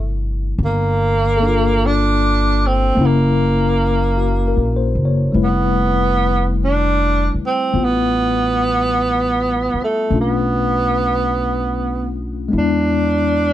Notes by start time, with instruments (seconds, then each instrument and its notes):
Already playing: upright bass G1, tine electric piano C3 G3 A3 D4 E4, tenor saxophone A3
0.58 upright bass G1
0.65 tenor saxophone A#3
1.37 tine electric piano A#3 A4
1.43 tine electric piano D4
1.48 tine electric piano F4
1.86 tenor saxophone D4
2.67 tenor saxophone C4
2.95 upright bass F#1, tine electric piano A#3 C#4
3.01 tine electric piano E4
3.06 tenor saxophone A#3
4.17 tine electric piano F#4
4.48 tine electric piano A#4
4.57 upright bass A#1
4.76 tine electric piano C5
4.95 upright bass F#1
5.05 tine electric piano C#5
5.32 upright bass F1, tine electric piano G3 A3 E4 B4
5.44 tenor saxophone B3
6.64 tenor saxophone D4
7.34 muted upright bass stroke
7.47 tenor saxophone C4
7.73 upright bass A1, tine electric piano B3 F4
7.84 tenor saxophone B3
9.74 muted upright bass stroke
9.84 tenor saxophone A3
10.10 upright bass B1, tine electric piano A3 C#4 D4
10.15 tine electric piano F4
10.21 tenor saxophone B3
12.48 tine electric piano G#3 B3 D4
12.53 upright bass E2, tine electric piano E4
12.58 tenor saxophone D4